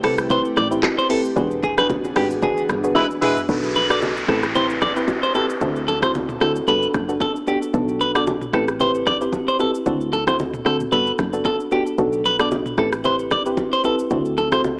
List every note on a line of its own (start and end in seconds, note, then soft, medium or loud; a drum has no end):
0.00 0.43 C2 loud
0.00 1.34 A3 medium
0.00 1.33 C4 medium
0.00 0.28 C4 medium
0.00 0.28 E4 medium
0.00 1.34 G4 medium
0.00 0.28 G4 medium
0.00 0.29 B4 medium
0.00 cross-stick loud
0.00 open hi-hat medium
0.00 shaker soft
0.04 0.14 A4 medium
0.18 cross-stick loud
0.18 shaker medium
0.30 0.47 C4 loud
0.30 0.48 E4 medium
0.30 0.48 G4 medium
0.30 0.48 B4 loud
0.30 0.41 C5 medium
0.30 kick loud
0.30 low conga medium
0.30 shaker medium
0.45 shaker medium
0.57 0.87 A1 loud
0.57 0.67 D5 medium
0.57 cross-stick medium
0.57 low bongo medium
0.57 shaker medium
0.71 1.07 C4 medium
0.71 1.07 E4 medium
0.71 1.07 G4 medium
0.71 1.07 B4 medium
0.71 shaker loud
0.83 kick medium
0.83 cross-stick loud
0.83 clap loud
0.83 high bongo medium
0.83 low bongo medium
0.83 shaker medium
0.99 1.07 C5 medium
0.99 shaker medium
1.09 1.34 C4 medium
1.09 1.34 E4 medium
1.09 1.35 G4 medium
1.09 1.21 A4 medium
1.09 1.35 B4 medium
1.09 open hi-hat medium
1.09 shaker medium
1.25 shaker loud
1.36 2.12 E1 loud
1.36 3.47 E3 medium
1.36 3.47 B3 medium
1.36 1.53 D4 medium
1.36 3.47 D4 medium
1.36 1.54 F#4 medium
1.36 3.47 F#4 medium
1.36 1.54 G#4 medium
1.36 3.47 G#4 medium
1.36 1.54 B4 loud
1.36 kick loud
1.36 low conga medium
1.36 shaker medium
1.51 shaker medium
1.63 1.74 G#4 medium
1.63 kick loud
1.63 shaker medium
1.77 2.13 D4 medium
1.77 2.13 F#4 medium
1.77 2.13 G#4 medium
1.77 2.14 B4 medium
1.77 1.87 B4 medium
1.77 cross-stick loud
1.77 low bongo medium
1.77 shaker medium
1.90 kick medium
1.90 high bongo medium
1.90 low conga medium
1.90 shaker medium
2.04 high bongo medium
2.04 shaker medium
2.16 2.56 G#1 medium
2.16 2.41 D4 medium
2.16 2.41 F#4 medium
2.16 2.27 G4 medium
2.16 2.41 G#4 medium
2.16 2.41 B4 medium
2.16 cross-stick loud
2.16 open hi-hat medium
2.16 shaker soft
2.31 shaker medium
2.42 2.60 D4 medium
2.42 2.60 F#4 medium
2.42 2.60 G#4 medium
2.42 2.62 G#4 medium
2.42 2.60 B4 loud
2.42 kick loud
2.42 low conga medium
2.42 shaker medium
2.57 shaker medium
2.69 3.00 G1 medium
2.69 cross-stick medium
2.69 low bongo medium
2.69 shaker medium
2.84 3.19 D4 medium
2.84 3.19 F#4 medium
2.84 3.20 G#4 medium
2.84 3.20 B4 medium
2.84 shaker loud
2.95 3.05 G#3 medium
2.95 3.05 E4 medium
2.95 3.05 B4 loud
2.95 3.06 B4 medium
2.95 kick loud
2.95 high tom medium
2.95 high bongo medium
2.95 low bongo medium
2.95 shaker medium
3.11 shaker medium
3.22 3.39 G#3 medium
3.22 3.47 D4 medium
3.22 3.39 E4 medium
3.22 3.47 F#4 medium
3.22 3.47 G#4 medium
3.22 3.33 G#4 medium
3.22 3.39 B4 loud
3.22 3.47 B4 medium
3.22 mid tom loud
3.22 open hi-hat medium
3.22 shaker medium
3.37 floor tom loud
3.37 shaker loud
3.49 4.25 B1 loud
3.49 3.86 D4 medium
3.49 3.87 F#4 medium
3.49 3.87 A4 medium
3.49 3.87 B4 loud
3.49 kick loud
3.49 downlifter medium
3.49 low conga medium
3.49 shaker medium
3.63 shaker medium
3.76 3.86 B4 medium
3.76 low bongo medium
3.76 shaker medium
3.90 4.05 D4 medium
3.90 4.05 F#4 medium
3.90 4.05 A4 medium
3.90 4.05 B4 medium
3.90 3.99 D5 medium
3.90 cross-stick loud
3.90 shaker medium
4.02 high bongo medium
4.02 low conga medium
4.02 shaker medium
4.17 shaker medium
4.28 4.83 A1 loud
4.28 4.46 C4 medium
4.28 4.46 E4 medium
4.28 4.46 G4 medium
4.28 4.39 A4 medium
4.28 4.46 B4 medium
4.28 kick medium
4.28 cross-stick loud
4.28 shaker soft
4.43 cross-stick medium
4.43 shaker medium
4.55 4.93 C4 medium
4.55 4.93 E4 medium
4.55 4.93 G4 medium
4.55 4.93 B4 loud
4.55 4.66 C5 medium
4.55 low conga medium
4.55 shaker medium
4.70 shaker medium
4.81 5.12 G1 medium
4.81 4.92 D5 medium
4.81 kick loud
4.81 cross-stick medium
4.81 low bongo medium
4.81 shaker medium
4.96 5.32 C4 medium
4.96 5.32 E4 medium
4.96 5.32 G4 medium
4.96 5.32 B4 medium
4.96 shaker loud
5.08 kick medium
5.08 high bongo medium
5.08 low bongo medium
5.08 shaker medium
5.23 5.31 C5 medium
5.23 shaker medium
5.35 5.59 C4 medium
5.35 5.60 E4 medium
5.35 5.60 G4 medium
5.35 5.45 A4 medium
5.35 5.60 B4 medium
5.35 high bongo medium
5.35 shaker medium
5.50 shaker loud
5.61 6.37 D2 loud
5.61 5.99 C4 medium
5.61 5.99 E4 medium
5.61 5.99 F#4 medium
5.61 5.99 A4 loud
5.61 kick loud
5.61 low conga medium
5.61 shaker medium
5.76 shaker medium
5.88 5.98 A4 medium
5.88 low bongo medium
5.88 shaker medium
6.02 6.18 C4 medium
6.02 6.18 E4 medium
6.02 6.18 F#4 medium
6.02 6.18 A4 medium
6.02 6.11 C5 medium
6.02 kick loud
6.02 cross-stick loud
6.02 shaker medium
6.15 high bongo medium
6.15 low conga medium
6.15 shaker medium
6.29 mid tom loud
6.29 shaker medium
6.41 6.61 D2 medium
6.41 6.58 C4 medium
6.41 6.58 E4 medium
6.41 6.58 F#4 medium
6.41 6.52 A4 medium
6.41 6.59 A4 medium
6.41 cross-stick loud
6.41 shaker soft
6.56 shaker medium
6.68 6.87 G1 loud
6.68 7.05 B3 medium
6.68 7.05 D4 medium
6.68 7.05 F#4 medium
6.68 7.06 A4 loud
6.68 6.87 B4 medium
6.68 low conga medium
6.68 shaker medium
6.83 shaker medium
6.94 7.25 F#1 loud
6.94 kick loud
6.94 cross-stick medium
6.94 low bongo medium
6.94 shaker medium
7.08 7.44 B3 medium
7.08 7.44 D4 medium
7.08 7.44 F#4 medium
7.08 7.45 A4 medium
7.08 shaker medium
7.20 7.31 A4 medium
7.20 kick medium
7.20 high bongo medium
7.20 low bongo medium
7.20 shaker medium
7.36 shaker medium
7.47 7.72 B3 medium
7.47 7.72 D4 medium
7.47 7.72 F#4 medium
7.47 7.58 G4 medium
7.47 7.72 A4 medium
7.47 high bongo medium
7.47 shaker medium
7.63 shaker loud
7.73 8.50 B1 loud
7.73 8.11 B3 medium
7.73 8.11 D4 medium
7.73 8.12 F#4 medium
7.73 8.12 A4 loud
7.73 kick loud
7.73 low conga medium
7.73 shaker medium
7.89 shaker medium
8.01 8.11 B4 medium
8.01 low bongo medium
8.01 shaker medium
8.15 8.30 B3 medium
8.15 8.30 D4 medium
8.15 8.30 F#4 medium
8.15 8.30 A4 medium
8.15 8.24 D5 medium
8.15 cross-stick loud
8.15 shaker medium
8.27 high bongo medium
8.27 low conga medium
8.27 shaker medium
8.41 mid tom loud
8.41 shaker medium
8.53 9.08 A1 loud
8.53 8.71 C4 medium
8.53 8.71 E4 medium
8.53 8.71 G4 medium
8.53 8.64 A4 medium
8.53 8.71 B4 medium
8.53 kick loud
8.53 cross-stick loud
8.53 shaker soft
8.68 cross-stick medium
8.68 shaker medium
8.80 9.18 C4 medium
8.80 9.18 E4 medium
8.80 9.18 G4 medium
8.80 9.18 B4 loud
8.80 8.91 C5 medium
8.80 low conga medium
8.80 shaker medium
8.95 shaker medium
9.06 9.37 G1 medium
9.06 9.17 D5 medium
9.06 kick loud
9.06 cross-stick medium
9.06 low bongo medium
9.06 shaker medium
9.21 9.57 C4 medium
9.21 9.57 E4 medium
9.21 9.57 G4 medium
9.21 9.57 B4 medium
9.21 shaker medium
9.32 kick medium
9.32 high bongo medium
9.32 low bongo medium
9.32 shaker medium
9.48 9.56 C5 medium
9.48 shaker medium
9.59 9.84 C4 medium
9.59 9.84 E4 medium
9.59 9.84 G4 medium
9.59 9.70 A4 medium
9.59 9.84 B4 medium
9.59 high bongo medium
9.59 shaker medium
9.75 shaker loud
9.86 10.62 D2 loud
9.86 10.24 C4 medium
9.86 10.24 E4 medium
9.86 10.24 F#4 medium
9.86 10.24 A4 loud
9.86 kick loud
9.86 low conga medium
9.86 shaker medium
10.01 shaker medium
10.13 10.23 A4 medium
10.13 low bongo medium
10.13 shaker medium
10.27 10.42 C4 medium
10.27 10.42 E4 medium
10.27 10.43 F#4 medium
10.27 10.43 A4 medium
10.27 10.36 C5 medium
10.27 kick loud
10.27 cross-stick loud
10.27 low bongo medium
10.27 shaker medium
10.39 high bongo medium
10.39 low conga medium
10.39 shaker medium
10.54 mid tom loud
10.54 shaker medium
10.65 10.86 D2 loud
10.65 10.83 C4 medium
10.65 10.83 E4 medium
10.65 10.83 F#4 medium
10.65 10.83 A4 medium
10.65 10.76 A4 medium
10.65 cross-stick loud
10.65 shaker soft
10.80 mid tom medium
10.80 shaker medium
10.92 11.12 G1 loud
10.92 11.30 B3 medium
10.92 11.30 D4 medium
10.92 11.30 F#4 medium
10.92 11.30 A4 loud
10.92 11.11 B4 medium
10.92 low conga medium
10.92 shaker medium
11.07 shaker medium
11.19 11.49 F#1 loud
11.19 kick loud
11.19 cross-stick medium
11.19 low bongo medium
11.19 shaker medium
11.33 11.69 B3 medium
11.33 11.69 D4 medium
11.33 11.69 F#4 medium
11.33 11.69 A4 medium
11.33 shaker loud
11.45 11.56 A4 medium
11.45 kick medium
11.45 high bongo medium
11.45 low bongo medium
11.45 shaker medium
11.60 shaker medium
11.71 11.96 B3 medium
11.71 11.96 D4 medium
11.71 11.97 F#4 medium
11.71 11.82 G4 medium
11.71 11.97 A4 medium
11.71 high bongo medium
11.71 shaker medium
11.87 shaker loud
11.98 12.74 B1 loud
11.98 12.36 B3 medium
11.98 12.36 D4 medium
11.98 12.36 F#4 medium
11.98 12.36 A4 loud
11.98 kick loud
11.98 low conga medium
11.98 shaker medium
12.13 shaker medium
12.25 12.36 B4 medium
12.25 low bongo medium
12.25 shaker medium
12.39 12.55 B3 medium
12.39 12.55 D4 medium
12.39 12.55 F#4 medium
12.39 12.55 A4 medium
12.39 12.49 D5 medium
12.39 cross-stick loud
12.39 shaker medium
12.51 high bongo medium
12.51 low conga medium
12.51 shaker medium
12.66 mid tom loud
12.66 shaker medium
12.78 13.33 A1 loud
12.78 12.95 C4 medium
12.78 12.95 E4 medium
12.78 12.96 G4 medium
12.78 12.89 A4 medium
12.78 12.96 B4 medium
12.78 kick loud
12.78 cross-stick medium
12.78 shaker soft
12.92 cross-stick loud
12.92 shaker medium
13.04 13.42 C4 medium
13.04 13.42 E4 medium
13.04 13.42 G4 medium
13.04 13.43 B4 loud
13.04 13.15 C5 medium
13.04 low conga medium
13.04 shaker medium
13.19 shaker medium
13.31 13.62 G1 medium
13.31 13.42 D5 medium
13.31 kick loud
13.31 cross-stick medium
13.31 low bongo medium
13.31 shaker medium
13.46 13.82 C4 medium
13.46 13.82 E4 medium
13.46 13.82 G4 medium
13.46 13.82 B4 medium
13.46 shaker medium
13.57 kick medium
13.57 high bongo medium
13.57 low bongo medium
13.57 shaker medium
13.72 13.81 C5 medium
13.72 shaker soft
13.84 14.09 C4 medium
13.84 14.09 E4 medium
13.84 14.09 G4 medium
13.84 13.95 A4 medium
13.84 14.09 B4 medium
13.84 high bongo medium
13.84 shaker medium
13.99 shaker loud
14.11 14.80 D2 loud
14.11 14.49 C4 medium
14.11 14.49 E4 medium
14.11 14.49 F#4 medium
14.11 14.49 A4 loud
14.11 kick loud
14.11 low conga medium
14.11 shaker medium
14.25 shaker medium
14.38 14.48 A4 medium
14.38 low bongo medium
14.38 shaker medium
14.52 14.67 C4 medium
14.52 14.67 E4 medium
14.52 14.67 F#4 medium
14.52 14.68 A4 medium
14.52 14.61 C5 medium
14.52 kick medium
14.52 cross-stick loud
14.52 shaker medium
14.64 high bongo medium
14.64 low conga medium
14.64 shaker medium